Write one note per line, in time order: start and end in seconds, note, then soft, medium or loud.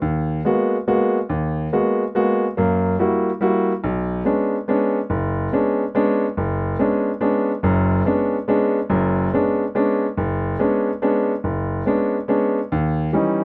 0.02 0.39 D#2 medium
0.45 0.75 G#3 soft
0.45 0.75 A#3 soft
0.45 0.75 B3 soft
0.45 0.75 F#4 medium
0.88 1.17 G#3 medium
0.88 1.17 A#3 soft
0.88 1.17 B3 soft
0.88 1.17 F#4 medium
1.29 1.66 D#2 medium
1.73 2.02 G#3 medium
1.73 2.02 A#3 soft
1.73 2.02 B3 soft
1.73 2.02 F#4 medium
2.15 2.44 G#3 medium
2.15 2.44 A#3 soft
2.15 2.44 B3 soft
2.15 2.45 F#4 medium
2.57 2.94 F#2 medium
2.57 2.94 A#3 medium
2.99 3.29 G3 soft
2.99 3.29 A#3 soft
2.99 3.29 E4 soft
2.99 3.29 F#4 medium
3.41 3.70 G3 medium
3.41 3.71 A#3 soft
3.41 3.71 E4 soft
3.41 3.71 F#4 medium
3.84 4.20 B1 medium
4.25 4.55 G#3 soft
4.25 4.55 B3 soft
4.25 4.55 C#4 soft
4.25 4.55 D4 soft
4.68 4.98 G#3 medium
4.68 4.98 B3 medium
4.68 4.98 C#4 soft
4.68 4.98 D4 medium
5.10 5.47 F#1 medium
5.52 5.82 G#3 soft
5.52 5.82 B3 soft
5.52 5.82 C#4 soft
5.52 5.83 D4 medium
5.95 6.24 G#3 medium
5.95 6.24 B3 medium
5.95 6.25 C#4 soft
5.95 6.25 D4 medium
6.37 6.74 F#1 medium
6.79 7.09 G#3 soft
6.79 7.09 B3 soft
6.79 7.09 C#4 soft
6.79 7.09 D4 soft
7.21 7.51 G#3 medium
7.21 7.51 B3 medium
7.21 7.51 C#4 soft
7.21 7.51 D4 medium
7.63 8.00 F#1 medium
7.63 8.00 F#2 medium
8.05 8.35 G#3 soft
8.05 8.36 B3 soft
8.05 8.36 C#4 soft
8.05 8.36 D4 medium
8.48 8.78 G#3 medium
8.48 8.78 B3 soft
8.48 8.78 C#4 soft
8.48 8.78 D4 medium
8.90 9.27 F#1 medium
8.90 9.27 F#2 medium
9.34 9.63 G#3 soft
9.34 9.63 B3 soft
9.34 9.63 C#4 soft
9.34 9.63 D4 medium
9.75 10.05 G#3 medium
9.75 10.05 B3 soft
9.75 10.05 C#4 soft
9.75 10.05 D4 medium
10.17 10.54 F#1 medium
10.59 10.89 G#3 medium
10.59 10.89 B3 soft
10.59 10.89 C#4 soft
10.59 10.89 D4 medium
11.02 11.31 G#3 medium
11.02 11.32 B3 medium
11.02 11.32 C#4 medium
11.02 11.32 D4 medium
11.44 11.81 F#1 medium
11.86 12.16 G#3 soft
11.86 12.16 B3 soft
11.86 12.16 C#4 soft
11.86 12.16 D4 medium
12.28 12.58 G#3 soft
12.28 12.58 B3 soft
12.28 12.58 C#4 soft
12.28 12.58 D4 medium
12.72 13.08 D#2 medium
13.13 13.43 E3 soft
13.13 13.43 G3 soft
13.13 13.43 C#4 soft
13.13 13.43 D#4 medium